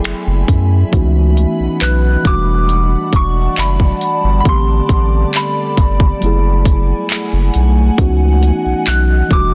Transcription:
Already playing: synth keys F#3 A3 B3 E4 G#4, ambient pad A3 E5 G#5 B5
0.04 sub bass F#1, finger snap, closed hi-hat
0.27 sub bass F#1
0.48 sub bass F#2, kick, closed hi-hat
0.91 sub bass C#2, synth keys E3 B3 C#4 D#4 F#4, ambient pad F#4 D#5 F#5 B5, kick, closed hi-hat
1.37 closed hi-hat
1.60 sub bass B1
1.81 sub bass B1, celesta B4, synth bell F#6, clap, closed hi-hat
2.22 sub bass E1, synth keys E3 G3 A3, ambient pad G3 D5 F#5 A5, kick, closed hi-hat
2.27 synth keys D4 F#4, synth bell D6
2.69 closed hi-hat
3.13 sub bass E1, synth bell C#6, kick, closed hi-hat
3.57 sub bass F#1, celesta E5, synth bell B5, clap, closed hi-hat
3.80 kick
4.01 closed hi-hat
4.24 sub bass G1
4.40 synth keys D3 A3, synth bell B5
4.45 sub bass A1, synth keys B3 C4, ambient pad A4 D5, synth bell C6, kick, closed hi-hat
4.49 synth keys G4
4.89 sub bass A1, kick, closed hi-hat
5.34 synth bell B5, clap, closed hi-hat
5.77 sub bass G1, kick, closed hi-hat
6.00 kick
6.19 sub bass F#1, synth keys F#3 A3 B3, ambient pad A3 F#5 G#5, closed hi-hat
6.24 synth keys E4 G#4
6.65 kick, closed hi-hat
7.09 clap, closed hi-hat
7.33 sub bass F#1
7.54 sub bass B1, closed hi-hat
7.98 sub bass C#2, synth keys E3 B3 C#4 D#4 F#4, ambient pad F#4 D#5, kick, closed hi-hat
8.43 closed hi-hat
8.66 sub bass B1
8.87 sub bass B1, synth bell F#6, clap, closed hi-hat
9.28 sub bass E1, synth keys E3 G3 A3, kick, closed hi-hat
9.33 synth keys D4 F#4, synth bell D6

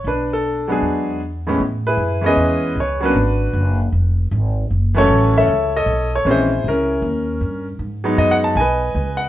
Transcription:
0.04 upright bass B1, grand piano D4 B4
0.33 grand piano A4
0.68 grand piano F#3 G#3 B3 D4
0.72 grand piano G#4
0.82 upright bass E2
1.47 grand piano A2 E3 G#3 B3 C#4
1.60 upright bass A2
1.87 grand piano E4 G#4 B4
1.97 upright bass F#2
2.21 grand piano E3 G#3 B3 C#4
2.26 grand piano G#4 B4 D#5
2.36 upright bass E2
2.75 upright bass C#2
2.80 grand piano C#5
3.00 grand piano F#3 A#3 B3 C#4
3.05 grand piano D4 F#4 B4
3.14 upright bass G#1
3.53 upright bass F#1
3.92 upright bass F1
4.31 upright bass G#1
4.70 upright bass F#1
4.94 grand piano E3 F#3 A3 C#4 C#5
5.00 grand piano E4 A4
5.08 upright bass A1
5.37 grand piano A4 C#5 E5
5.48 upright bass C#2
5.77 grand piano A4 D#5
5.86 upright bass B1
6.16 grand piano C#5
6.25 upright bass A#1, grand piano E3 G#3 C4 C#4
6.30 grand piano E4 G#4 C5
6.64 upright bass C#2
6.68 grand piano C#4 E4 A#4
7.02 upright bass D#2
7.41 upright bass G2
7.79 upright bass G#2
8.04 grand piano F#3 G#3 B3 D#4
8.17 upright bass F#2, grand piano D#5
8.31 grand piano F#5
8.44 grand piano A5
8.55 upright bass B1, grand piano G#5
8.60 grand piano B4 D#5
8.95 upright bass C#2
9.17 grand piano F#5

